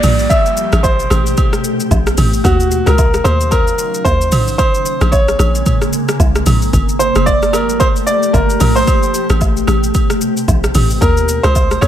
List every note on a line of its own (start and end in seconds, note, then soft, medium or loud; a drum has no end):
0.00 0.27 A#1 medium
0.00 0.28 F3 medium
0.00 0.28 G3 medium
0.00 0.28 A#3 medium
0.00 0.28 G4 medium
0.00 0.32 D5 loud
0.00 mid tom medium
0.00 open hi-hat medium
0.00 downlifter medium
0.00 high agogo medium
0.00 shaker loud
0.19 shaker medium
0.30 2.43 B2 medium
0.30 2.43 C3 medium
0.30 2.43 A3 medium
0.30 2.43 G4 medium
0.30 0.80 E5 loud
0.30 kick loud
0.30 high agogo medium
0.30 shaker medium
0.46 shaker medium
0.57 shaker loud
0.72 1.07 A1 medium
0.72 cross-stick loud
0.72 high agogo medium
0.72 shaker soft
0.83 1.60 C5 medium
0.83 kick medium
0.83 low woodblock medium
0.83 shaker medium
1.00 shaker medium
1.10 1.35 A1 medium
1.10 cross-stick medium
1.10 high agogo medium
1.10 shaker medium
1.26 shaker medium
1.37 kick loud
1.37 high agogo medium
1.37 shaker medium
1.53 cross-stick medium
1.53 shaker medium
1.64 shaker loud
1.80 shaker medium
1.91 2.15 A#1 loud
1.91 kick medium
1.91 low woodblock medium
1.91 shaker medium
2.07 cross-stick loud
2.07 shaker medium
2.18 2.42 A1 medium
2.18 mid tom medium
2.18 open hi-hat medium
2.18 high agogo medium
2.18 shaker loud
2.33 shaker medium
2.44 2.82 D#2 loud
2.44 6.69 C#3 medium
2.44 4.30 D#3 medium
2.44 4.30 F#3 medium
2.44 2.88 F#4 medium
2.44 4.30 F5 medium
2.44 kick loud
2.44 high agogo medium
2.44 shaker medium
2.60 shaker medium
2.71 shaker loud
2.86 3.21 C#2 medium
2.86 3.26 A#4 medium
2.86 cross-stick loud
2.86 high agogo medium
2.86 shaker medium
2.98 kick loud
2.98 low woodblock medium
2.98 shaker medium
3.14 cross-stick medium
3.14 shaker medium
3.24 3.73 D#2 loud
3.24 3.50 C5 loud
3.24 cross-stick medium
3.24 high agogo medium
3.24 shaker medium
3.41 shaker medium
3.51 4.07 A#4 loud
3.51 kick loud
3.51 high agogo medium
3.51 shaker medium
3.67 shaker medium
3.79 shaker loud
3.94 shaker medium
4.05 4.34 D#2 loud
4.05 4.55 C5 loud
4.05 kick medium
4.05 low woodblock medium
4.05 shaker medium
4.21 shaker medium
4.32 4.56 A#1 loud
4.32 6.71 C3 medium
4.32 6.71 G#3 medium
4.32 8.84 A#3 medium
4.32 mid tom loud
4.32 open hi-hat medium
4.32 high agogo medium
4.32 shaker loud
4.48 shaker medium
4.58 5.08 C5 loud
4.58 kick loud
4.58 high agogo medium
4.58 shaker medium
4.74 shaker medium
4.86 shaker loud
5.01 5.35 A#1 loud
5.01 cross-stick loud
5.01 high agogo medium
5.01 shaker soft
5.12 5.89 C#5 loud
5.12 kick medium
5.12 low woodblock medium
5.12 shaker medium
5.28 cross-stick medium
5.28 shaker soft
5.39 5.63 A#1 loud
5.39 cross-stick medium
5.39 high agogo medium
5.39 shaker medium
5.55 shaker medium
5.66 kick loud
5.66 mid tom medium
5.66 high agogo medium
5.66 shaker medium
5.82 cross-stick medium
5.82 shaker medium
5.93 shaker loud
6.09 cross-stick loud
6.09 shaker medium
6.20 6.44 C2 loud
6.20 kick medium
6.20 low woodblock medium
6.20 shaker medium
6.36 cross-stick medium
6.36 shaker medium
6.46 6.70 A#1 loud
6.46 mid tom loud
6.46 open hi-hat medium
6.46 high agogo medium
6.46 shaker loud
6.62 shaker medium
6.73 7.11 G1 loud
6.73 8.85 F3 medium
6.73 10.98 A3 medium
6.73 10.98 G4 medium
6.73 kick loud
6.73 high agogo medium
6.73 shaker medium
6.89 shaker medium
6.99 7.27 C5 loud
6.99 shaker loud
7.15 7.55 F1 medium
7.15 cross-stick loud
7.15 high agogo medium
7.15 shaker medium
7.26 7.54 D5 loud
7.26 kick medium
7.26 low woodblock medium
7.26 shaker medium
7.43 cross-stick medium
7.43 shaker medium
7.53 8.01 G1 loud
7.53 7.81 A#4 medium
7.53 cross-stick medium
7.53 high agogo medium
7.53 shaker medium
7.69 shaker medium
7.80 7.86 C5 loud
7.80 kick loud
7.80 high agogo medium
7.80 shaker medium
7.96 shaker medium
8.07 8.32 D5 loud
8.07 shaker loud
8.23 shaker medium
8.33 8.58 G1 loud
8.33 8.58 A#4 medium
8.33 kick medium
8.33 low woodblock medium
8.33 shaker medium
8.50 shaker medium
8.60 8.85 A#1 loud
8.60 8.75 A#4 medium
8.60 mid tom loud
8.60 open hi-hat medium
8.60 high agogo medium
8.60 shaker loud
8.76 9.26 C5 loud
8.76 shaker medium
8.88 11.00 B2 medium
8.88 11.00 C3 medium
8.88 kick loud
8.88 high agogo medium
8.88 shaker medium
9.03 shaker medium
9.14 shaker loud
9.30 9.64 A1 medium
9.30 cross-stick loud
9.30 high agogo medium
9.30 shaker medium
9.41 kick medium
9.41 low woodblock medium
9.41 shaker medium
9.57 shaker soft
9.67 9.92 A1 loud
9.67 cross-stick loud
9.67 high agogo medium
9.67 shaker medium
9.84 shaker medium
9.94 kick loud
9.94 high agogo medium
9.94 shaker medium
10.10 cross-stick loud
10.10 shaker medium
10.21 shaker loud
10.37 shaker medium
10.48 10.72 A#1 medium
10.48 kick medium
10.48 low woodblock medium
10.48 shaker medium
10.64 cross-stick loud
10.64 shaker medium
10.75 10.99 A1 medium
10.75 mid tom medium
10.75 open hi-hat medium
10.75 high agogo medium
10.75 shaker loud
10.90 shaker medium
11.01 11.39 D#2 loud
11.01 11.88 C#3 medium
11.01 11.88 D#3 medium
11.01 11.88 F#3 medium
11.01 11.88 F4 medium
11.01 11.45 A#4 medium
11.01 kick loud
11.01 high agogo medium
11.01 shaker medium
11.17 shaker medium
11.28 shaker loud
11.43 11.78 C#2 loud
11.43 11.83 C5 loud
11.43 cross-stick loud
11.43 high agogo medium
11.43 shaker medium
11.55 kick medium
11.55 low woodblock medium
11.55 shaker medium
11.71 cross-stick medium
11.71 shaker soft
11.81 11.88 D#2 loud
11.81 11.88 C#5 loud
11.81 cross-stick loud
11.81 high agogo medium
11.81 shaker medium